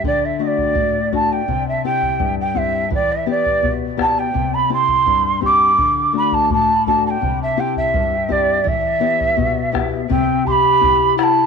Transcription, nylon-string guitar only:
\new Staff \with { instrumentName = "Nylon-string guitar" } { \time 2/4 \key c \lydian \tempo 4 = 84 d8 <a d' fis'>8 a,8 <a d' fis'>8 | c8 <c' e' g'>8 g,8 <c' e' g'>8 | e8 <b e' g'>8 b,8 <b e' g'>8 | c8 <c' e' g'>8 g,8 <c' e' g'>8 |
d8 <a d' fis'>8 a,8 <a d' fis'>8 | c8 <c' e' g'>8 g,8 <c' e' g'>8 | e8 <b e' g'>8 b,8 <b e' g'>8 | c4 <c' e' g'>4 | }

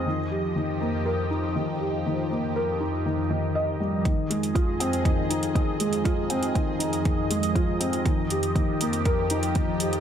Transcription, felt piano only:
\new Staff \with { instrumentName = "Felt piano" } { \time 4/4 \key f \minor \tempo 4 = 120 ees8 g'8 ees8 bes8 bes'8 ees'8 ees8 g'8 | ees8 bes8 bes'8 ees'8 ees8 ees8 ees''8 g8 | ees8 aes8 f'8 c'8 ees8 ees'8 ees8 aes8 | f'8 c'8 ees8 ees'8 ees8 aes8 f'8 c'8 |
ees8 g'8 ees8 bes8 bes'8 ees'8 ees8 g'8 | }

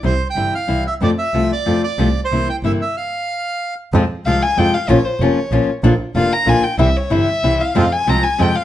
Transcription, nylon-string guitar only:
\new Staff \with { instrumentName = "Nylon-string guitar" } { \time 3/4 \key c \mixolydian \tempo 4 = 186 <c e g c' e'>8 r8 <c e g c' e'>8 r8 <c e g c' e'>8 r8 | <c f a c' f'>8 r8 <c f a c' f'>8 r8 <c f a c' f'>8 r8 | <c f a c' f'>8 r8 <c e bes c' e'>8 r8 <c e bes c' e'>8 r8 | r2. |
\key f \minor <c f aes c' f'>8 r8 <c f aes c' f'>8 r8 <c f aes c' f'>8 r8 | <f bes des' f'>8 r8 <f bes des' f'>8 r8 <f bes des' f'>8 r8 | <d bes d' f'>8 r8 <d bes d' f'>8 r8 <d bes d' f'>8 r8 | <c e g c' e'>8 r8 <c e g c' e'>8 r8 <c e g c' e'>8 r8 |
<c f aes c' f'>8 r8 <c f aes c' f'>8 r8 <c f aes c' f'>8 r8 | }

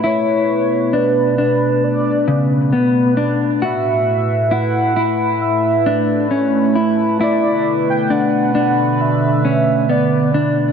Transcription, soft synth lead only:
\new Staff \with { instrumentName = "Soft synth lead" } { \time 4/4 \key b \minor \tempo 4 = 67 cis''4 b'4 d''4 r4 | e''4 fis''4 e''4 r4 | d''8. g''16 fis''4 e''4 d''8. r16 | }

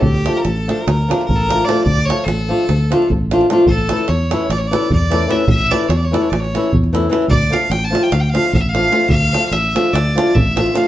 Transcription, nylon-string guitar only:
\new Staff \with { instrumentName = "Nylon-string guitar" } { \time 9/8 \tempo 4. = 99 r8 <f a d' f'>8 r8 <f a d' f'>8 r8 <f a d' f'>8 r8 <f a d' f'>8 <f a d' f'>8 | r8 <f a d' f'>8 r8 <f a d' f'>8 r8 <f a d' f'>8 r8 <f a d' f'>8 <f a d' f'>8 | r8 <e a cis' e'>8 r8 <e a cis' e'>8 r8 <e a cis' e'>8 r8 <e a cis' e'>8 <e a cis' e'>8 | r8 <e a cis' e'>8 r8 <e a cis' e'>8 r8 <e a cis' e'>8 r8 <e a cis' e'>8 <e a cis' e'>8 |
r8 <f a d' f'>8 r8 <f a d' f'>8 r8 <f a d' f'>8 r8 <f a d' f'>8 <f a d' f'>8 | r8 <f a d' f'>8 r8 <f a d' f'>8 r8 <f a d' f'>8 r8 <f a d' f'>8 <f a d' f'>8 | }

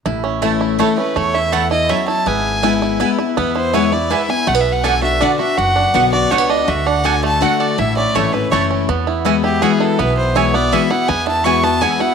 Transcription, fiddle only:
\new Staff \with { instrumentName = "Fiddle" } { \time 3/4 \key a \major \tempo 4 = 163 r2 a'8 b'8 | cis''8 e''8 fis''8 dis''8 e''8 a''8 | gis''2 r4 | b'8 c''8 cis''8 d''8 e''8 gis''8 |
\tuplet 3/2 { fis''8 e''8 fis''8 } gis''8 e''8 d''8 e''8 | fis''4. d''8 cis''8 dis''8 | e''8 fis''8 gis''8 a''8 fis''8 d''8 | e''8 d''8 cis''8 b'8 cis''8 r8 |
r4. g'8 gis'8 a'8 | b'8 c''8 cis''8 d''8 e''8 fis''8 | gis''8 a''8 cis'''8 a''8 gis''8 fis''8 | }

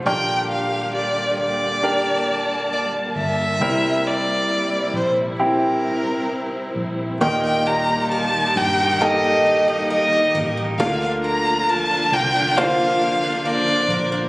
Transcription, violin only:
\new Staff \with { instrumentName = "Violin" } { \time 4/4 \key ees \lydian \tempo 4 = 67 g''8 f''8 d''8 d''4. d''8 e''8~ | e''8 d''4 c''8 bes'4. r8 | g''16 g''16 bes''8 a''8 g''8 ees''4 ees''8. r16 | f''16 f''16 bes''8 a''8 g''8 f''4 d''8. r16 | }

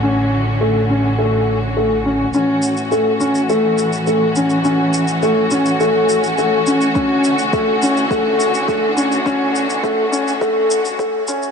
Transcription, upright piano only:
\new Staff \with { instrumentName = "Upright piano" } { \time 4/4 \key a \major \tempo 4 = 104 cis'4 a8 cis'8 a4 a8 cis'8 | cis'4 a8 cis'8 a4 a8 cis'8 | cis'4 a8 cis'8 a4 a8 cis'8 | cis'4 a8 cis'8 a4 a8 cis'8 |
cis'4 a8 cis'8 a4 a8 cis'8 | }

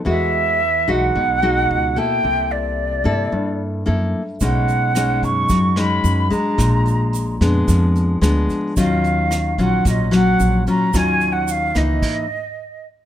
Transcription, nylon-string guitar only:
\new Staff \with { instrumentName = "Nylon-string guitar" } { \time 4/4 \key ees \minor \tempo 4 = 110 << { <gis fis'>4 r8 <gis dis' fis'>4 <gis dis' fis'>4 <bes e' a'>8~ | <bes e' a'>4. <bes e' a'>4. <bes e' a'>8 r8 | <gis cis' dis'>4 <gis cis' dis'>4. <gis cis' dis'>4 <gis d'>8~ | <gis d'>4. <aes ces' d'>4. <aes ces' d'>4 |
<ges des' f'>4. <ges des' f'>4 <ges des'>4 <ges des' f'>8 | <ges des' f'>4. <fes bes ees'>4 r4. | } \\ { e2 b,2 | c2 g,2 | b,2 fis2 | bes,2 f2 |
ees2 bes,2 | ees2 r2 | } >> }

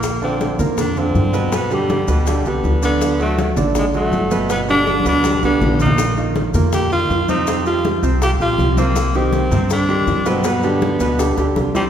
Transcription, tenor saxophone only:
\new Staff \with { instrumentName = "Tenor saxophone" } { \time 4/4 \key bes \mixolydian \tempo 4 = 161 bes8 c'4 r8 d'8 c'4. | b8 g4 g4 b4 b8~ | b8 a4 r8 aes8 a4. | b8 d'4 d'4 b4 ees'8~ |
ees'8 r4. g'8 f'4 ees'8~ | ees'8 f'4 r8 g'8 f'4 bes8~ | bes8 c'4. d'4. c'8 | b2. r8 g8 | }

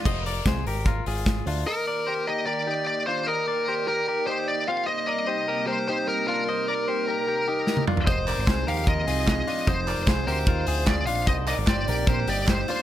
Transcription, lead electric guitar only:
\new Staff \with { instrumentName = "Lead electric guitar" } { \time 4/4 \key ees \major \tempo 4 = 150 r1 | bes'4. ees''8 d''4 d''8 c''8 | bes'4. bes'4 c''8 d''8 f''8 | ees''8 ees''4. c''8 c''8 bes'8 bes'8~ |
bes'2.~ bes'8 r8 | c''4. f''8 ees''4 ees''4 | c''4. c''4. d''8 f''8 | ees''8 ees''8 d''4 c''8 d''8 c''8 c''8 | }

